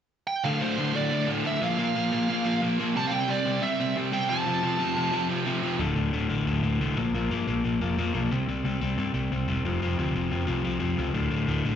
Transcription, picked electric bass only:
0, 0, Header, 1, 2, 480
1, 0, Start_track
1, 0, Key_signature, -1, "minor"
1, 0, Tempo, 334635
1, 634, Time_signature, 4, 2, 24, 8
1, 16860, End_track
2, 0, Start_track
2, 0, Title_t, "Picked electric bass"
2, 0, Program_c, 0, 34
2, 8313, Note_on_c, 0, 26, 94
2, 8491, Note_off_c, 0, 26, 0
2, 8556, Note_on_c, 0, 26, 91
2, 8733, Note_off_c, 0, 26, 0
2, 8792, Note_on_c, 0, 26, 87
2, 8971, Note_off_c, 0, 26, 0
2, 9031, Note_on_c, 0, 33, 90
2, 9210, Note_off_c, 0, 33, 0
2, 9270, Note_on_c, 0, 26, 91
2, 9449, Note_off_c, 0, 26, 0
2, 9512, Note_on_c, 0, 26, 90
2, 9691, Note_off_c, 0, 26, 0
2, 9768, Note_on_c, 0, 36, 94
2, 9941, Note_off_c, 0, 36, 0
2, 10001, Note_on_c, 0, 34, 89
2, 10176, Note_off_c, 0, 34, 0
2, 10244, Note_on_c, 0, 34, 92
2, 10418, Note_off_c, 0, 34, 0
2, 10486, Note_on_c, 0, 43, 86
2, 10659, Note_off_c, 0, 43, 0
2, 10721, Note_on_c, 0, 34, 87
2, 10896, Note_off_c, 0, 34, 0
2, 10963, Note_on_c, 0, 34, 92
2, 11137, Note_off_c, 0, 34, 0
2, 11206, Note_on_c, 0, 29, 93
2, 11379, Note_off_c, 0, 29, 0
2, 11437, Note_on_c, 0, 41, 90
2, 11613, Note_off_c, 0, 41, 0
2, 11690, Note_on_c, 0, 35, 92
2, 11861, Note_off_c, 0, 35, 0
2, 11926, Note_on_c, 0, 36, 90
2, 12098, Note_off_c, 0, 36, 0
2, 12161, Note_on_c, 0, 36, 93
2, 12335, Note_off_c, 0, 36, 0
2, 12396, Note_on_c, 0, 36, 84
2, 12571, Note_off_c, 0, 36, 0
2, 12643, Note_on_c, 0, 36, 88
2, 12815, Note_off_c, 0, 36, 0
2, 12881, Note_on_c, 0, 43, 90
2, 13053, Note_off_c, 0, 43, 0
2, 13111, Note_on_c, 0, 36, 84
2, 13287, Note_off_c, 0, 36, 0
2, 13349, Note_on_c, 0, 36, 91
2, 13525, Note_off_c, 0, 36, 0
2, 13586, Note_on_c, 0, 28, 93
2, 13763, Note_off_c, 0, 28, 0
2, 13834, Note_on_c, 0, 29, 89
2, 14008, Note_off_c, 0, 29, 0
2, 14074, Note_on_c, 0, 29, 94
2, 14248, Note_off_c, 0, 29, 0
2, 14315, Note_on_c, 0, 38, 86
2, 14488, Note_off_c, 0, 38, 0
2, 14562, Note_on_c, 0, 29, 87
2, 14732, Note_off_c, 0, 29, 0
2, 14802, Note_on_c, 0, 29, 87
2, 14972, Note_off_c, 0, 29, 0
2, 15039, Note_on_c, 0, 36, 91
2, 15210, Note_off_c, 0, 36, 0
2, 15280, Note_on_c, 0, 36, 87
2, 15450, Note_off_c, 0, 36, 0
2, 15513, Note_on_c, 0, 41, 89
2, 15685, Note_off_c, 0, 41, 0
2, 15756, Note_on_c, 0, 37, 84
2, 15927, Note_off_c, 0, 37, 0
2, 15988, Note_on_c, 0, 26, 87
2, 16162, Note_off_c, 0, 26, 0
2, 16226, Note_on_c, 0, 26, 85
2, 16400, Note_off_c, 0, 26, 0
2, 16470, Note_on_c, 0, 26, 84
2, 16643, Note_off_c, 0, 26, 0
2, 16715, Note_on_c, 0, 33, 94
2, 16860, Note_off_c, 0, 33, 0
2, 16860, End_track
0, 0, End_of_file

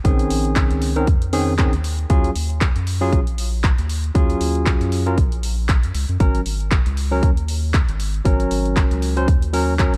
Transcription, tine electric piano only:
0, 0, Header, 1, 2, 480
1, 0, Start_track
1, 0, Tempo, 512821
1, 46, Time_signature, 4, 2, 24, 8
1, 9334, End_track
2, 0, Start_track
2, 0, Title_t, "Tine electric piano"
2, 0, Program_c, 0, 4
2, 39, Note_on_c, 0, 51, 83
2, 43, Note_on_c, 0, 60, 74
2, 47, Note_on_c, 0, 61, 75
2, 51, Note_on_c, 0, 68, 87
2, 865, Note_off_c, 0, 51, 0
2, 867, Note_off_c, 0, 60, 0
2, 869, Note_off_c, 0, 61, 0
2, 871, Note_off_c, 0, 68, 0
2, 898, Note_on_c, 0, 51, 79
2, 899, Note_on_c, 0, 60, 69
2, 901, Note_on_c, 0, 61, 65
2, 903, Note_on_c, 0, 70, 81
2, 994, Note_off_c, 0, 51, 0
2, 995, Note_off_c, 0, 60, 0
2, 996, Note_off_c, 0, 61, 0
2, 997, Note_off_c, 0, 70, 0
2, 1242, Note_on_c, 0, 51, 89
2, 1243, Note_on_c, 0, 60, 79
2, 1246, Note_on_c, 0, 61, 80
2, 1247, Note_on_c, 0, 68, 98
2, 1427, Note_off_c, 0, 51, 0
2, 1428, Note_off_c, 0, 60, 0
2, 1429, Note_off_c, 0, 61, 0
2, 1430, Note_off_c, 0, 68, 0
2, 1482, Note_on_c, 0, 51, 79
2, 1484, Note_on_c, 0, 60, 71
2, 1486, Note_on_c, 0, 61, 72
2, 1488, Note_on_c, 0, 68, 82
2, 1608, Note_off_c, 0, 51, 0
2, 1609, Note_off_c, 0, 60, 0
2, 1610, Note_off_c, 0, 61, 0
2, 1610, Note_off_c, 0, 68, 0
2, 1962, Note_on_c, 0, 54, 82
2, 1964, Note_on_c, 0, 61, 73
2, 1966, Note_on_c, 0, 65, 74
2, 1968, Note_on_c, 0, 68, 94
2, 2147, Note_off_c, 0, 54, 0
2, 2148, Note_off_c, 0, 61, 0
2, 2149, Note_off_c, 0, 65, 0
2, 2150, Note_off_c, 0, 68, 0
2, 2818, Note_on_c, 0, 54, 84
2, 2819, Note_on_c, 0, 61, 76
2, 2822, Note_on_c, 0, 65, 75
2, 2823, Note_on_c, 0, 68, 91
2, 2986, Note_off_c, 0, 54, 0
2, 2987, Note_off_c, 0, 61, 0
2, 2988, Note_off_c, 0, 65, 0
2, 2989, Note_off_c, 0, 68, 0
2, 3880, Note_on_c, 0, 54, 82
2, 3883, Note_on_c, 0, 61, 73
2, 3888, Note_on_c, 0, 65, 77
2, 3891, Note_on_c, 0, 68, 91
2, 4706, Note_off_c, 0, 54, 0
2, 4708, Note_off_c, 0, 61, 0
2, 4710, Note_off_c, 0, 65, 0
2, 4712, Note_off_c, 0, 68, 0
2, 4738, Note_on_c, 0, 54, 75
2, 4739, Note_on_c, 0, 61, 67
2, 4741, Note_on_c, 0, 65, 66
2, 4744, Note_on_c, 0, 70, 77
2, 4835, Note_off_c, 0, 54, 0
2, 4835, Note_off_c, 0, 61, 0
2, 4836, Note_off_c, 0, 65, 0
2, 4837, Note_off_c, 0, 70, 0
2, 5802, Note_on_c, 0, 54, 81
2, 5805, Note_on_c, 0, 61, 73
2, 5808, Note_on_c, 0, 70, 92
2, 5987, Note_off_c, 0, 54, 0
2, 5989, Note_off_c, 0, 61, 0
2, 5990, Note_off_c, 0, 70, 0
2, 6658, Note_on_c, 0, 54, 83
2, 6661, Note_on_c, 0, 61, 78
2, 6664, Note_on_c, 0, 70, 87
2, 6826, Note_off_c, 0, 54, 0
2, 6828, Note_off_c, 0, 61, 0
2, 6829, Note_off_c, 0, 70, 0
2, 7719, Note_on_c, 0, 54, 81
2, 7725, Note_on_c, 0, 61, 77
2, 7731, Note_on_c, 0, 70, 89
2, 8545, Note_off_c, 0, 54, 0
2, 8548, Note_off_c, 0, 61, 0
2, 8551, Note_off_c, 0, 70, 0
2, 8578, Note_on_c, 0, 54, 74
2, 8581, Note_on_c, 0, 61, 67
2, 8584, Note_on_c, 0, 72, 84
2, 8675, Note_off_c, 0, 54, 0
2, 8676, Note_off_c, 0, 61, 0
2, 8678, Note_off_c, 0, 72, 0
2, 8923, Note_on_c, 0, 54, 93
2, 8925, Note_on_c, 0, 61, 85
2, 8928, Note_on_c, 0, 70, 96
2, 9107, Note_off_c, 0, 54, 0
2, 9109, Note_off_c, 0, 61, 0
2, 9110, Note_off_c, 0, 70, 0
2, 9163, Note_on_c, 0, 54, 79
2, 9166, Note_on_c, 0, 61, 69
2, 9169, Note_on_c, 0, 70, 90
2, 9288, Note_off_c, 0, 54, 0
2, 9289, Note_off_c, 0, 61, 0
2, 9291, Note_off_c, 0, 70, 0
2, 9334, End_track
0, 0, End_of_file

